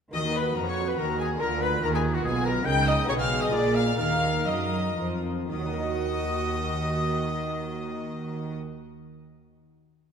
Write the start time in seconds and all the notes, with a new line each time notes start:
0.11 D#3 A#3 F#4 A#4 D#5 D#6
0.15 D#2 D#3 F#4
0.36 B4 B5
0.55 F2 F3 A#4 A#5
0.66 C#5 C#6
0.87 B4 B5
0.98 D#2 D#3 A#4 A#5
1.19 G#4 G#5
1.36 D3 A#3 F4 A#4
1.40 D2 D3 F4 A#4 A#5
1.61 B4 B5
1.82 D#2 D#3 A#4 A#5
1.93 G#4 G#5
2.14 F#4 F#5
2.24 B1 B2 G#4 G#5
2.45 A#4 A#5
2.62 C#3 A#3 D#4 A#4 G5
2.67 C#2 C#3 D#4 G6
2.88 D#5 D#6
3.04 B3 D#4 G#4 C#5
3.09 B1 B2 G#4 C#5 C#6
3.20 F5 F6
3.42 D#5 D#6
3.49 A#2 G#3 F4 A#4 D5
3.54 A#1 A#2 D5 D6
3.75 F5 F6
3.98 D#2 D#3 D#4 A#4 F5 F6
4.47 F#2 F#3 D#5 D#6
4.97 F2 F3
5.51 D#2 D#3 F#4 D#5 D#6
5.59 F#3
5.66 D#4
5.73 A#4
5.80 D#5